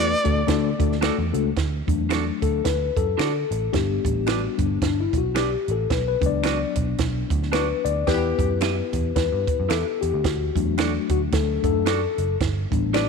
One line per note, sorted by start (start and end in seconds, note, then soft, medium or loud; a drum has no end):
0.00 0.13 E2 medium
0.00 0.15 A3 medium
0.00 0.15 D4 medium
0.00 0.15 F#4 medium
0.00 0.15 B4 medium
0.00 0.98 D5 loud
0.24 0.43 D2 medium
0.24 0.40 A3 medium
0.24 0.40 D4 medium
0.24 0.40 F#4 medium
0.24 0.40 A4 loud
0.24 kick medium
0.24 closed hi-hat medium
0.47 0.72 D3 loud
0.47 0.69 A3 loud
0.47 0.69 D4 loud
0.47 0.69 F#4 medium
0.47 0.69 A4 loud
0.47 kick medium
0.47 snare loud
0.47 closed hi-hat loud
0.79 1.09 D2 medium
0.79 0.94 A3 medium
0.79 0.95 D4 medium
0.79 0.95 F#4 medium
0.79 0.95 A4 medium
0.79 kick medium
0.79 closed hi-hat medium
0.92 snare soft
1.01 1.23 A3 medium
1.01 1.15 D4 medium
1.01 1.23 D4 medium
1.01 1.23 F#4 medium
1.01 1.15 F#4 medium
1.01 1.15 A4 medium
1.01 1.23 A4 medium
1.01 1.16 D5 loud
1.01 finger snap loud
1.01 snare loud
1.01 closed hi-hat medium
1.19 1.31 E2 medium
1.33 1.51 C#2 medium
1.33 1.49 A3 medium
1.33 1.49 D4 medium
1.33 1.49 F#4 medium
1.33 1.49 A4 medium
1.33 closed hi-hat medium
1.56 1.81 D2 loud
1.56 kick medium
1.56 snare loud
1.56 closed hi-hat medium
1.87 2.30 E2 medium
1.87 2.61 F#3 medium
1.87 2.61 A3 soft
1.87 2.61 D4 medium
1.87 kick loud
1.87 closed hi-hat medium
2.09 2.23 D4 medium
2.09 2.24 F#4 medium
2.09 2.24 A4 loud
2.09 2.24 D5 medium
2.09 finger snap medium
2.09 snare loud
2.09 closed hi-hat medium
2.42 2.60 D2 medium
2.42 2.66 A4 loud
2.42 kick medium
2.42 closed hi-hat medium
2.65 2.89 D2 medium
2.65 2.98 B4 loud
2.65 kick medium
2.65 snare loud
2.65 closed hi-hat loud
2.96 3.14 F#2 medium
2.96 3.76 A4 loud
2.96 kick medium
2.96 closed hi-hat medium
3.18 3.43 D3 medium
3.18 3.32 D4 medium
3.18 3.32 F#4 loud
3.18 3.32 A4 medium
3.18 3.32 D5 medium
3.18 finger snap loud
3.18 snare loud
3.18 closed hi-hat medium
3.51 3.68 A1 loud
3.51 closed hi-hat medium
3.72 3.97 G1 medium
3.72 4.56 G3 medium
3.72 4.57 B3 soft
3.72 4.57 D4 medium
3.72 4.29 G4 medium
3.72 kick medium
3.72 snare loud
3.72 closed hi-hat medium
4.05 4.46 A1 medium
4.05 kick medium
4.05 closed hi-hat medium
4.26 4.40 D4 medium
4.26 4.57 F#4 medium
4.26 4.41 G4 medium
4.26 4.41 B4 medium
4.26 4.41 D5 medium
4.26 finger snap medium
4.26 snare loud
4.26 closed hi-hat medium
4.57 4.76 G1 medium
4.57 4.79 G3 soft
4.57 4.79 B3 soft
4.57 4.79 D4 medium
4.57 kick medium
4.57 closed hi-hat medium
4.82 5.06 G1 medium
4.82 5.01 D4 medium
4.82 kick loud
4.82 snare loud
4.82 closed hi-hat loud
5.00 5.19 E4 medium
5.13 5.55 B1 medium
5.13 kick medium
5.13 closed hi-hat medium
5.18 5.35 F#4 medium
5.35 5.49 D4 medium
5.35 5.49 G4 medium
5.35 5.73 G4 medium
5.35 5.49 B4 medium
5.35 5.49 D5 medium
5.35 finger snap loud
5.35 snare loud
5.35 closed hi-hat medium
5.68 5.85 A1 medium
5.68 5.89 A4 medium
5.68 closed hi-hat medium
5.90 6.15 B1 loud
5.90 6.07 B4 medium
5.90 kick medium
5.90 snare loud
5.90 closed hi-hat medium
6.08 6.27 B4 loud
6.21 6.63 C#2 medium
6.21 8.03 F#3 medium
6.21 8.03 B3 soft
6.21 8.03 D4 medium
6.21 kick loud
6.21 closed hi-hat medium
6.26 6.77 D5 medium
6.43 6.57 D4 medium
6.43 6.58 F#4 medium
6.43 6.58 B4 medium
6.43 6.58 D5 medium
6.43 finger snap medium
6.43 snare loud
6.43 closed hi-hat medium
6.76 6.93 B1 medium
6.76 kick medium
6.76 closed hi-hat medium
6.98 7.23 B1 loud
6.98 kick medium
6.98 snare loud
6.98 closed hi-hat loud
7.30 7.72 D2 medium
7.30 kick medium
7.30 closed hi-hat medium
7.43 snare soft
7.52 7.66 D4 medium
7.52 7.66 F#4 medium
7.52 7.66 B4 medium
7.52 7.86 B4 loud
7.52 7.66 D5 medium
7.52 finger snap loud
7.52 snare loud
7.52 closed hi-hat medium
7.85 8.02 D2 loud
7.85 8.08 D5 loud
7.85 closed hi-hat medium
8.07 8.32 E2 loud
8.07 8.48 E3 medium
8.07 8.48 B3 medium
8.07 10.20 B3 soft
8.07 10.21 E4 medium
8.07 8.48 G4 loud
8.07 10.00 G4 medium
8.07 9.14 B4 medium
8.07 kick loud
8.07 snare loud
8.07 closed hi-hat medium
8.39 8.80 F#2 medium
8.39 kick loud
8.39 closed hi-hat medium
8.61 8.75 E4 medium
8.61 8.75 G4 medium
8.61 8.75 B4 medium
8.61 8.75 E5 medium
8.61 finger snap medium
8.61 snare loud
8.61 closed hi-hat medium
8.93 9.10 E2 medium
8.93 kick medium
8.93 closed hi-hat medium
9.16 9.28 E2 medium
9.16 9.72 B4 loud
9.16 kick medium
9.16 snare loud
9.16 closed hi-hat medium
9.33 9.44 G2 medium
9.47 kick medium
9.47 closed hi-hat medium
9.60 9.68 F#2 medium
9.69 9.82 E2 medium
9.69 9.82 E4 medium
9.69 9.83 G4 medium
9.69 10.03 A4 medium
9.69 9.83 B4 medium
9.69 9.83 E5 medium
9.69 finger snap loud
9.69 snare loud
9.69 closed hi-hat medium
10.01 10.11 E2 medium
10.01 10.25 G4 medium
10.01 closed hi-hat medium
10.14 10.22 D2 medium
10.24 10.49 D2 loud
10.24 11.10 F#4 medium
10.24 kick loud
10.24 snare loud
10.24 closed hi-hat medium
10.55 10.97 E2 medium
10.55 11.61 F#3 medium
10.55 11.62 A3 soft
10.55 11.62 D4 medium
10.55 kick medium
10.55 closed hi-hat medium
10.78 10.91 D4 medium
10.78 10.91 F#4 medium
10.78 10.92 A4 medium
10.78 10.92 D5 medium
10.78 finger snap medium
10.78 snare loud
10.78 closed hi-hat medium
11.09 11.27 D2 medium
11.09 11.21 F#4 medium
11.09 kick medium
11.09 closed hi-hat medium
11.32 11.57 D2 medium
11.32 11.63 A4 medium
11.32 kick medium
11.32 snare loud
11.32 closed hi-hat loud
11.63 12.05 F#2 medium
11.63 11.83 F#3 medium
11.63 11.84 A3 soft
11.63 11.84 D4 medium
11.63 12.37 A4 medium
11.63 kick medium
11.63 closed hi-hat medium
11.86 11.99 D4 medium
11.86 12.00 F#4 medium
11.86 12.00 A4 medium
11.86 12.00 D5 medium
11.86 finger snap medium
11.86 snare loud
11.86 closed hi-hat medium
12.18 12.35 F#1 medium
12.18 closed hi-hat medium
12.41 12.65 G1 loud
12.41 kick loud
12.41 snare loud
12.41 closed hi-hat medium
12.71 13.09 A1 loud
12.71 13.05 G3 medium
12.71 13.05 B3 soft
12.71 13.06 D4 medium
12.71 kick medium
12.71 closed hi-hat medium
12.93 13.07 D4 medium
12.93 13.07 G4 medium
12.93 13.07 B4 medium
12.93 13.09 D5 loud
12.93 13.08 D5 medium
12.93 finger snap medium
12.93 snare loud
12.93 closed hi-hat medium